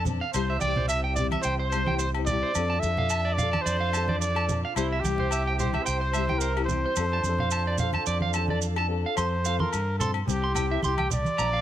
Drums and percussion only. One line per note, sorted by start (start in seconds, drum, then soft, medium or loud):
0.05 high conga medium
0.05 low conga medium
0.05 maracas medium
0.34 low agogo medium
0.34 maracas medium
0.61 high conga medium
0.61 maracas medium
0.76 low conga medium
0.89 low agogo medium
0.89 maracas medium
1.16 low conga medium
1.16 maracas medium
1.31 high conga medium
1.31 low agogo medium
1.43 maracas medium
1.72 low agogo medium
1.72 maracas medium
1.87 high conga medium
1.99 maracas medium
2.15 low agogo medium
2.27 high conga medium
2.27 low conga medium
2.27 maracas medium
2.55 low agogo medium
2.55 maracas medium
2.83 high conga medium
2.83 maracas medium
2.97 low conga medium
3.09 low agogo medium
3.09 maracas medium
3.38 low conga medium
3.38 maracas medium
3.53 high conga medium
3.53 low agogo medium
3.67 maracas medium
3.93 low agogo medium
3.93 maracas medium
4.08 high conga medium
4.22 maracas medium
4.36 low agogo medium
4.49 high conga medium
4.49 low conga medium
4.49 maracas medium
4.76 low agogo medium
4.76 maracas medium
5.04 high conga medium
5.04 maracas medium
5.18 low conga medium
5.31 low agogo medium
5.31 maracas medium
5.59 low conga medium
5.59 maracas medium
5.73 high conga medium
5.73 low agogo medium
5.86 maracas medium
6.13 low agogo medium
6.13 maracas medium
6.29 high conga medium
6.41 maracas medium
6.57 low agogo medium
6.68 high conga medium
6.68 low conga medium
6.68 maracas medium
6.96 low agogo medium
6.96 maracas medium
7.23 high conga medium
7.23 maracas medium
7.38 low conga medium
7.51 low agogo medium
7.51 maracas medium
7.78 low conga medium
7.78 maracas medium
7.93 high conga medium
7.93 low agogo medium
8.06 maracas medium
8.20 high conga medium
8.33 low agogo medium
8.33 maracas medium
8.48 high conga medium
8.62 maracas medium
8.76 low agogo medium
9.17 low agogo medium
9.17 maracas medium
9.45 maracas medium
9.59 high conga medium
9.73 low agogo medium
9.73 maracas medium
10.00 low conga medium
10.00 maracas medium
10.14 low agogo medium
10.28 low conga medium
10.28 maracas medium
10.55 low conga medium
10.55 low agogo medium
10.55 maracas medium
10.83 high conga medium
10.83 maracas medium
10.98 high conga medium
10.98 low agogo medium
11.10 low conga medium
11.10 maracas medium
11.24 high conga medium
11.24 maracas soft
11.38 low agogo medium
11.38 maracas medium